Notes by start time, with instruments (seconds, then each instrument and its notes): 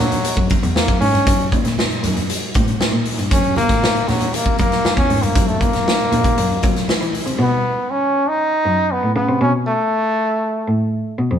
Already playing: trombone F#3
0.00 muted conga, high conga, low conga
0.11 closed hi-hat, low conga
0.25 closed hi-hat
0.37 cello F#2, kick
0.50 kick, closed hi-hat, high conga
0.63 cello E2, closed hi-hat
0.76 trombone A#3, snare
0.88 cello F#2, kick, closed hi-hat
1.01 cello G#2, trombone C#4, open hi-hat
1.14 cello G2, closed hi-hat
1.27 cello F#2, kick, closed hi-hat, muted conga, low conga
1.40 closed hi-hat
1.52 kick, closed hi-hat, muted conga, high conga
1.65 cello A#2, snare, closed hi-hat
1.78 snare, high conga
1.91 cello F#2, closed hi-hat
2.03 cello F#2, closed hi-hat, muted conga, high conga, low conga
2.16 closed hi-hat, low conga
2.30 closed hi-hat, muted conga
2.54 cello A2, kick, closed hi-hat, muted conga, high conga
2.68 closed hi-hat
2.80 cello A#2, snare, muted conga
2.93 cello A#2
3.05 open hi-hat
3.19 cello G2, closed hi-hat
3.31 cello F#2, trombone C#4, kick, closed hi-hat, muted conga, low conga
3.44 closed hi-hat
3.56 trombone A#3, closed hi-hat, high conga
3.69 cello A2, kick, snare, closed hi-hat
3.83 snare, muted conga, high conga
3.95 cello A#2, closed hi-hat
4.07 cello A#2, trombone F#3, snare, open hi-hat, muted conga, high conga, low conga
4.19 closed hi-hat, low conga
4.34 trombone A#3, closed hi-hat, muted conga
4.46 kick
4.58 cello F#2, trombone A#3, kick, closed hi-hat, high conga
4.72 snare, closed hi-hat
4.85 snare, muted conga
4.97 cello E2, trombone C#4, kick, closed hi-hat
5.10 cello G#2, open hi-hat, muted conga
5.23 cello G2, trombone A#3, closed hi-hat
5.36 cello F#2, kick, closed hi-hat, muted conga, low conga
5.48 trombone A3, closed hi-hat
5.61 trombone A#3, kick, closed hi-hat, high conga
5.73 cello F#2, snare, closed hi-hat
5.87 snare, high conga
6.00 cello A#2, closed hi-hat
6.12 cello A#2, closed hi-hat, high conga, low conga
6.23 kick, closed hi-hat, low conga
6.37 cello F#2, closed hi-hat, muted conga
6.50 closed hi-hat
6.62 cello F#3, kick, closed hi-hat, muted conga, high conga
6.76 snare, closed hi-hat
6.88 cello E3, snare, muted conga
7.01 cello E3, closed hi-hat
7.13 open hi-hat, muted conga
7.26 cello C3, closed hi-hat
7.39 cello B2, trombone B3
7.91 trombone C#4
8.29 trombone D#4
8.66 cello F#2
8.92 trombone B3
9.03 cello A2
9.16 cello C#3, trombone B3
9.29 cello C3
9.41 cello B2, trombone C#4
9.66 trombone A3
10.68 cello A2
11.19 cello B2
11.31 cello F2